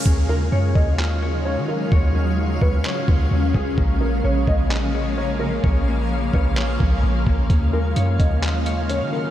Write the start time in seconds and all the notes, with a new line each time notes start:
0.06 D#2 C#3 F#3 G#3 C#4 D#4 F4 F#4 C#5 F5, kick
0.29 F4 A#4
0.52 F#2 C#5
0.75 D#2 D#5, kick
0.99 F4, clap
1.22 C#5
1.45 C#4 C#5
1.57 D#3
1.68 F4 A#4
1.92 D#2 C#4 C#5, kick
2.15 C#4
2.61 D#2 B4 C#5, kick
2.85 C#5, clap
3.08 D#2 F4, kick
3.31 D#2
3.54 C#2 C#4 G#4, kick
3.78 A#1 F3 A#3 G#4 F5, kick
4.01 C#4 A#4
4.24 A#1 C#5
4.47 A#1 D#5, kick
4.71 C#4, clap
4.94 C#5
5.17 A#3 C#5
5.40 C#4 A#4
5.63 A#1 A#4 C#5, kick
5.88 A#3
6.34 A#1 B4 C#5, kick
6.57 C#5, clap
6.80 A#1 C#4, kick
7.03 A#1
7.27 A#1 A#3, kick
7.50 D#2 F#3 G#3 C#4 D#4 F4 F#4, kick, closed hi-hat
7.73 F4 A#4
7.96 F#2 C#5, closed hi-hat
8.19 D#2 D#5, kick, closed hi-hat
8.43 F4, clap, closed hi-hat
8.66 C#5, closed hi-hat
8.89 C#4 C#5, closed hi-hat
9.01 D#3
9.13 F4 A#4